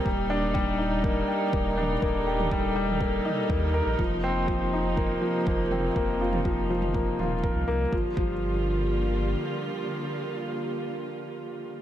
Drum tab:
T2 |--------------o-|---o---o--o-----|--------------o-|---o---o--o-----|
BD |o---o---o---o---|o---o---o---o---|o---o---o---o---|o---o---o---o---|

T2 |----------------|----------------|
BD |o-o-------------|----------------|